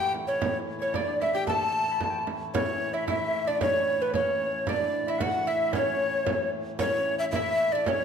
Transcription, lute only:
0.00 0.13 G4 medium
0.29 0.81 C#4 medium
0.82 0.95 C#4 medium
0.95 1.21 D4 medium
1.22 1.35 E4 medium
1.35 1.48 G4 medium
1.50 2.24 A4 medium
2.55 2.95 C#4 medium
2.94 3.07 E4 medium
3.08 3.47 E4 medium
3.47 3.60 D4 medium
3.61 4.01 C#4 medium
4.02 4.15 B3 medium
4.15 4.69 C#4 medium
4.69 5.08 D4 medium
5.08 5.20 E4 medium
5.21 5.47 F#4 loud
5.47 5.74 E4 medium
5.75 6.50 C#4 medium
6.83 7.36 C#4 medium
7.35 7.72 E4 loud
7.75 7.88 D4 medium
7.88 8.04 C#4 medium

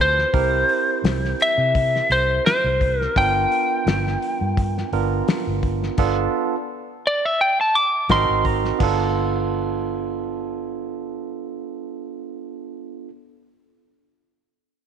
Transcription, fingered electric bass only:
0.00 0.24 D2 medium
0.34 0.62 C2 medium
1.04 1.33 C2 loud
1.58 2.00 C3 medium
2.10 2.38 C2 medium
2.64 3.06 C2 medium
3.16 3.44 G1 medium
3.86 4.15 G1 loud
4.41 4.82 G2 medium
4.92 5.21 G1 medium
5.47 5.88 G1 medium
5.98 6.26 G1 medium
8.09 8.25 G#1 medium
8.29 8.70 G#1 medium
8.80 13.08 G1 medium

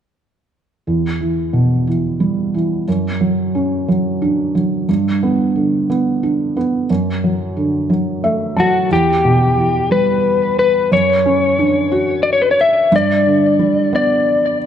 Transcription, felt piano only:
0.87 2.84 E2 soft
1.20 1.86 E3 soft
1.53 2.83 B2 soft
1.87 2.53 E3 soft
2.20 2.85 G3 soft
2.54 2.87 E3 soft
2.88 4.85 F#2 soft
3.21 3.87 F#3 soft
3.55 4.85 C#4 soft
3.88 4.53 F#3 soft
4.22 4.87 D4 soft
4.55 4.87 F#3 soft
4.89 6.86 G2 soft
5.23 5.88 B3 soft
5.56 6.86 D3 soft
5.90 6.55 B3 soft
6.23 6.88 D4 soft
6.57 6.89 B3 soft
6.90 8.87 F#2 soft
7.24 7.88 F#3 soft
7.57 8.87 D3 soft
7.90 8.55 F#3 soft
8.24 8.89 A3 soft
8.24 8.55 E5 soft
8.56 8.89 F#3 soft
8.56 8.88 A5 soft
8.90 10.88 E2 soft
9.25 10.55 B2 soft
9.57 10.87 E3 soft
9.91 10.89 G3 soft
10.92 12.89 F#2 medium
11.25 12.55 C#4 soft
11.59 12.89 D4 soft
11.92 12.89 F#4 soft
12.92 14.66 G2 medium
13.27 14.56 D3 soft
13.59 14.66 G3 soft
13.93 14.66 B3 soft

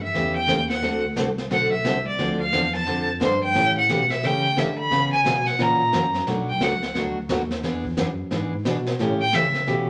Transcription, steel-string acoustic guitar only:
0.14 0.36 C#3 medium
0.14 0.36 E3 medium
0.14 0.36 A3 medium
0.14 0.36 C#4 medium
0.14 0.36 G4 medium
0.47 0.59 C#3 medium
0.47 0.59 E3 medium
0.47 0.60 A3 medium
0.47 0.60 C#4 medium
0.47 0.60 G4 medium
0.82 1.04 D3 medium
0.82 1.04 A3 medium
0.82 1.04 C4 medium
0.82 1.04 F#4 medium
0.82 1.04 A4 medium
1.16 1.28 D3 medium
1.16 1.28 A3 medium
1.16 1.28 C4 medium
1.16 1.28 F#4 medium
1.16 1.28 A4 medium
1.50 1.72 D3 medium
1.50 1.72 A3 medium
1.50 1.72 C4 medium
1.50 1.72 F#4 medium
1.50 1.73 A4 medium
1.84 1.96 D3 medium
1.84 1.96 A3 medium
1.84 1.96 C4 medium
1.84 1.96 F#4 medium
1.84 1.97 A4 medium
2.19 2.40 D3 medium
2.19 2.40 F3 medium
2.19 2.41 C4 medium
2.19 2.41 D4 medium
2.19 2.41 A4 medium
2.52 2.64 D3 medium
2.52 2.64 F3 medium
2.52 2.65 C4 medium
2.52 2.64 D4 medium
2.52 2.65 A4 medium
2.86 3.08 D3 medium
2.86 3.08 F3 medium
2.86 3.08 C4 medium
2.86 3.09 D4 medium
2.86 3.09 A4 medium
3.20 3.32 D3 medium
3.20 3.32 F3 medium
3.20 3.32 C4 medium
3.20 3.32 D4 medium
3.20 3.33 A4 medium
3.54 3.76 C#3 medium
3.54 3.76 E3 medium
3.54 3.76 A3 medium
3.54 3.77 C#4 medium
3.54 3.77 G4 medium
3.89 4.00 C#3 medium
3.89 4.00 E3 medium
3.89 4.01 A3 medium
3.89 4.01 C#4 medium
3.89 4.01 G4 medium
4.23 4.44 C#3 medium
4.23 4.44 E3 medium
4.23 4.45 A3 medium
4.23 4.45 C#4 medium
4.23 4.45 G4 medium
4.56 4.68 C#3 medium
4.56 4.68 E3 medium
4.56 4.69 A3 medium
4.56 4.69 C#4 medium
4.56 4.69 G4 medium
4.91 5.12 C#3 medium
4.91 5.13 E3 medium
4.91 5.13 B3 medium
4.91 5.13 C#4 medium
4.91 5.13 G#4 medium
5.25 5.36 C#3 medium
5.25 5.36 E3 medium
5.25 5.37 B3 medium
5.25 5.37 C#4 medium
5.25 5.37 G#4 medium
5.59 5.80 C#3 medium
5.59 5.80 E3 medium
5.59 5.81 A#3 medium
5.59 5.81 C#4 medium
5.59 5.81 F#4 medium
5.92 6.04 C#3 medium
5.92 6.04 E3 medium
5.92 6.04 A#3 medium
5.92 6.05 C#4 medium
5.92 6.05 F#4 medium
6.27 6.48 B2 medium
6.27 6.48 F#3 medium
6.27 6.49 A3 medium
6.27 6.49 D4 medium
6.27 6.49 F#4 medium
6.61 6.72 B2 medium
6.61 6.73 F#3 medium
6.61 6.73 A3 medium
6.61 6.73 D4 medium
6.61 6.73 F#4 medium
6.95 7.16 B2 medium
6.95 7.17 F#3 medium
6.95 7.17 A3 medium
6.95 7.17 D4 medium
6.95 7.17 F#4 medium
7.29 7.41 B2 medium
7.29 7.41 F#3 medium
7.29 7.41 A3 medium
7.29 7.41 D4 medium
7.29 7.41 F#4 medium
7.63 7.84 E3 medium
7.63 7.85 B3 medium
7.63 7.85 D4 medium
7.63 7.85 G#4 medium
7.97 8.08 E3 medium
7.97 8.08 B3 medium
7.97 8.09 D4 medium
7.97 8.09 G#4 medium
8.31 8.52 E3 medium
8.31 8.53 B3 medium
8.31 8.53 D4 medium
8.31 8.53 G#4 medium
8.65 8.76 E3 medium
8.65 8.77 B3 medium
8.65 8.77 D4 medium
8.65 8.77 G#4 medium
8.99 9.21 C#3 medium
8.99 9.21 E3 medium
8.99 9.21 A3 medium
8.99 9.21 C#4 medium
8.99 9.21 G4 medium
9.32 9.44 C#3 medium
9.32 9.44 E3 medium
9.32 9.44 A3 medium
9.32 9.45 C#4 medium
9.32 9.45 G4 medium
9.67 9.88 C#3 medium
9.67 9.88 E3 medium
9.67 9.88 A3 medium
9.67 9.88 C#4 medium
9.67 9.89 G4 medium

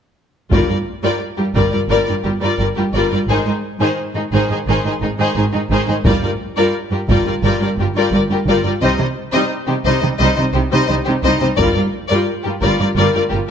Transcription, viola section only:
0.52 0.67 G3 soft
0.52 0.67 F4 soft
0.68 0.75 G3 soft
0.68 0.75 F4 soft
1.03 1.20 G3 soft
1.03 1.19 F4 soft
1.38 1.45 G3 soft
1.38 1.45 F4 soft
1.54 1.71 G3 soft
1.54 1.71 F4 soft
1.72 1.79 G3 soft
1.72 1.79 F4 soft
1.89 2.06 G3 soft
1.89 2.06 F4 soft
2.07 2.14 G3 soft
2.07 2.14 F4 soft
2.25 2.32 G3 soft
2.25 2.32 F4 soft
2.42 2.58 G3 soft
2.42 2.58 F4 soft
2.60 2.67 G3 soft
2.60 2.67 F4 soft
2.78 2.85 G3 soft
2.78 2.84 F4 soft
2.95 3.11 G3 soft
2.95 3.11 F4 soft
3.13 3.19 G3 soft
3.13 3.19 F4 soft
3.30 3.45 D#3 soft
3.30 3.45 D#4 soft
3.48 3.54 D#3 soft
3.48 3.54 D#4 soft
3.81 3.97 D#3 medium
3.81 3.97 D#4 soft
4.16 4.23 D#3 soft
4.16 4.23 D#4 soft
4.33 4.49 D#3 soft
4.33 4.49 D#4 soft
4.51 4.58 D#3 soft
4.51 4.58 D#4 soft
4.68 4.84 D#3 soft
4.68 4.84 D#4 soft
4.85 4.92 D#3 soft
4.85 4.92 D#4 soft
5.02 5.09 D#3 soft
5.02 5.09 D#4 soft
5.18 5.35 D#3 soft
5.18 5.35 D#4 soft
5.36 5.43 D#3 soft
5.36 5.43 D#4 soft
5.53 5.60 D#3 soft
5.53 5.60 D#4 soft
5.71 5.87 D#3 medium
5.71 5.87 D#4 soft
5.89 5.96 D#3 soft
5.89 5.95 D#4 soft
6.05 6.21 G3 medium
6.05 6.21 F4 medium
6.23 6.30 G3 soft
6.23 6.30 F4 soft
6.57 6.73 G3 medium
6.57 6.73 F4 medium
6.92 6.98 G3 soft
6.92 6.99 F4 soft
7.09 7.25 G3 medium
7.09 7.25 F4 medium
7.26 7.33 G3 soft
7.26 7.33 F4 soft
7.44 7.60 G3 medium
7.44 7.60 F4 medium
7.61 7.68 G3 soft
7.61 7.68 F4 soft
7.80 7.86 G3 soft
7.80 7.86 F4 soft
7.96 8.12 G3 medium
7.96 8.12 F4 medium
8.13 8.20 G3 soft
8.13 8.20 F4 soft
8.31 8.38 G3 soft
8.31 8.38 F4 soft
8.48 8.64 G3 medium
8.48 8.64 F4 soft
8.66 8.72 G3 soft
8.66 8.72 F4 soft
8.82 8.98 G3 medium
8.82 8.98 D#4 medium
9.00 9.07 G3 soft
9.00 9.07 D#4 soft
9.35 9.50 G3 medium
9.35 9.50 D#4 medium
9.69 9.76 G3 soft
9.69 9.76 D#4 soft
9.86 10.02 G3 medium
9.86 10.02 D#4 medium
10.04 10.10 G3 soft
10.04 10.10 D#4 soft
10.21 10.36 G3 medium
10.21 10.36 D#4 medium
10.38 10.45 G3 soft
10.38 10.45 D#4 soft
10.55 10.62 G3 medium
10.55 10.61 D#4 soft
10.72 10.88 G3 medium
10.72 10.88 D#4 medium
10.90 10.97 G3 soft
10.90 10.96 D#4 soft
11.08 11.14 G3 soft
11.08 11.14 D#4 medium
11.25 11.41 G3 medium
11.25 11.41 D#4 medium
11.42 11.49 G3 soft
11.42 11.49 D#4 soft
11.59 11.75 G3 medium
11.59 11.75 F4 medium
11.77 11.84 G3 soft
11.77 11.84 F4 soft
12.11 12.27 G3 medium
12.11 12.27 F4 medium
12.46 12.53 G3 soft
12.46 12.53 F4 soft
12.63 12.79 G3 medium
12.63 12.79 F4 medium
12.81 12.88 G3 soft
12.81 12.88 F4 soft
12.97 13.13 G3 medium
12.97 13.13 F4 medium
13.15 13.22 G3 soft
13.15 13.21 F4 soft
13.33 13.39 G3 soft
13.33 13.40 F4 soft

